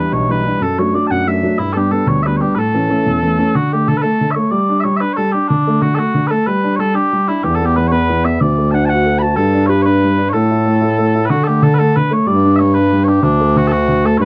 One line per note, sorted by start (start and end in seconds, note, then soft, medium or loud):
0.00 0.23 E3 soft
0.00 0.23 G3 soft
0.00 0.24 D4 soft
0.00 0.13 B4 medium
0.12 0.45 B1 medium
0.12 0.31 C#5 medium
0.29 0.43 E3 soft
0.29 0.44 G3 soft
0.29 0.44 D4 soft
0.29 0.62 B4 medium
0.44 0.58 E3 soft
0.44 0.58 G3 soft
0.44 0.58 D4 medium
0.61 0.93 F#2 soft
0.61 0.79 A4 medium
0.79 0.92 F#3 soft
0.79 0.93 A3 soft
0.79 0.93 D4 soft
0.79 0.95 C#5 medium
0.94 1.21 F#3 soft
0.94 1.21 A3 soft
0.94 1.21 D4 medium
0.94 1.07 D5 medium
1.07 1.43 F#2 medium
1.07 1.28 F#5 loud
1.07 1.11 A5 loud
1.27 1.42 F#3 soft
1.27 1.42 A3 soft
1.27 1.42 D4 soft
1.27 1.59 E5 medium
1.43 1.56 F#3 medium
1.43 1.56 A3 soft
1.43 1.56 D4 soft
1.59 1.91 G2 medium
1.59 1.73 E4 medium
1.73 1.90 G3 soft
1.73 1.90 B3 soft
1.73 1.90 D4 medium
1.73 1.77 A4 medium
1.77 1.91 G4 medium
1.91 2.18 G3 soft
1.91 2.19 B3 soft
1.91 2.19 D4 medium
1.91 2.08 A4 medium
2.07 2.40 D2 medium
2.07 2.23 C#5 loud
2.23 2.39 G3 soft
2.23 2.40 B3 soft
2.23 2.40 D4 soft
2.23 2.37 B4 medium
2.23 2.26 E5 medium
2.37 2.53 G3 medium
2.37 2.41 C#5 medium
2.41 2.54 B3 soft
2.41 2.54 D4 soft
2.41 2.55 G4 medium
2.55 2.89 A2 medium
2.55 3.55 A4 medium
2.55 2.58 B4 medium
2.75 2.88 E3 soft
2.75 2.88 A3 soft
2.75 2.88 C#4 medium
2.89 3.16 E3 soft
2.89 3.16 A3 soft
2.89 3.17 C#4 medium
3.06 3.38 E2 medium
3.23 3.37 E3 soft
3.23 3.37 A3 soft
3.23 3.38 C#4 soft
3.39 3.51 E3 soft
3.39 3.51 A3 soft
3.39 3.52 C#4 medium
3.55 3.87 D3 medium
3.55 3.72 F#4 medium
3.72 3.88 A3 medium
3.72 3.88 G4 medium
3.88 4.03 D3 medium
3.88 3.97 A4 medium
3.97 4.02 B4 medium
4.02 4.20 A3 medium
4.02 4.31 A4 medium
4.21 4.36 D3 soft
4.31 4.51 C#5 medium
4.31 4.35 E5 medium
4.36 4.51 A3 medium
4.51 4.83 G3 medium
4.51 4.80 D5 medium
4.69 4.84 D4 medium
4.80 4.96 C#5 medium
4.80 4.84 E5 medium
4.85 5.00 G3 medium
4.96 5.01 E5 medium
5.01 5.17 D4 medium
5.01 5.13 B4 medium
5.13 5.32 A4 medium
5.13 5.17 C#5 medium
5.18 5.33 G3 medium
5.32 5.49 D4 medium
5.32 5.48 G4 medium
5.48 5.80 D3 medium
5.48 5.82 D4 medium
5.67 5.82 A3 medium
5.82 5.97 D3 medium
5.82 5.95 F#4 medium
5.95 6.14 A3 medium
5.95 6.27 F#4 medium
5.95 5.98 A4 medium
6.15 6.30 D3 medium
6.27 6.46 A3 medium
6.27 6.47 A4 medium
6.27 6.31 B4 medium
6.47 6.78 G3 medium
6.47 6.76 B4 medium
6.64 6.79 D4 medium
6.76 6.94 G3 medium
6.76 6.95 A4 medium
6.76 6.80 C#5 medium
6.94 7.11 D4 medium
6.94 7.28 G4 loud
7.13 7.28 G3 soft
7.28 7.43 D4 medium
7.28 7.44 E4 medium
7.44 8.38 E2 medium
7.44 7.76 E3 medium
7.44 7.55 G4 medium
7.55 7.65 A4 medium
7.61 7.76 B3 medium
7.65 7.76 G4 loud
7.76 7.92 E3 medium
7.76 7.88 B4 medium
7.88 7.92 C#5 loud
7.92 8.09 B3 medium
7.92 8.25 B4 loud
8.10 8.24 E3 medium
8.25 8.40 B3 soft
8.25 8.40 E5 medium
8.40 9.35 D2 medium
8.40 9.34 D3 medium
8.40 8.71 D5 medium
8.58 8.73 A3 soft
8.71 8.88 D4 medium
8.71 8.85 F#5 medium
8.71 8.74 A5 medium
8.85 9.05 F#4 medium
8.85 9.19 F#5 loud
8.85 8.89 A5 loud
9.05 9.21 A4 soft
9.19 9.36 F#4 medium
9.19 9.36 A5 medium
9.19 9.22 B5 medium
9.36 10.32 G2 medium
9.36 10.02 G3 medium
9.36 9.66 A4 medium
9.54 9.69 D4 medium
9.66 9.84 G4 medium
9.66 9.82 B4 medium
9.66 9.70 C#5 medium
9.82 10.02 D4 medium
9.82 10.29 B4 loud
9.82 9.86 C#5 loud
10.04 10.18 G3 soft
10.18 10.33 D4 medium
10.29 11.25 A4 medium
10.29 10.33 C#5 medium
10.33 11.28 A2 medium
10.33 10.64 A3 medium
10.51 10.66 E4 medium
10.66 10.81 A3 medium
10.81 10.98 E4 medium
10.98 11.14 A3 medium
11.15 11.30 E4 medium
11.25 11.30 B4 medium
11.30 11.99 D3 medium
11.30 11.61 D3 medium
11.30 11.44 F#4 medium
11.44 11.62 A3 medium
11.44 11.63 G4 medium
11.44 11.47 A4 medium
11.62 11.78 D3 medium
11.62 11.74 A4 medium
11.74 11.79 B4 medium
11.79 11.95 A3 medium
11.79 11.96 A4 medium
11.96 12.11 D3 soft
11.96 12.13 B4 medium
12.11 12.26 A3 medium
12.11 12.27 C#5 medium
12.27 13.21 G2 medium
12.27 12.59 G3 medium
12.27 12.56 D5 medium
12.45 12.59 D4 medium
12.56 12.74 C#5 medium
12.56 12.59 E5 medium
12.60 12.75 G3 medium
12.74 12.92 D4 medium
12.74 13.04 B4 medium
12.92 13.07 G3 medium
13.04 13.22 D4 medium
13.04 13.24 G4 medium
13.04 13.08 C#5 medium
13.23 14.17 D2 medium
13.23 13.54 D3 medium
13.23 13.58 D4 loud
13.41 13.55 A3 medium
13.56 13.71 D3 medium
13.56 13.67 F#4 medium
13.67 13.88 A3 soft
13.67 13.72 A4 medium
13.72 14.06 F#4 medium
13.88 14.03 D3 soft
14.04 14.19 A3 medium
14.04 14.18 A4 medium
14.18 14.25 G2 medium
14.18 14.25 G3 medium
14.18 14.25 B4 medium
14.18 14.22 C#5 medium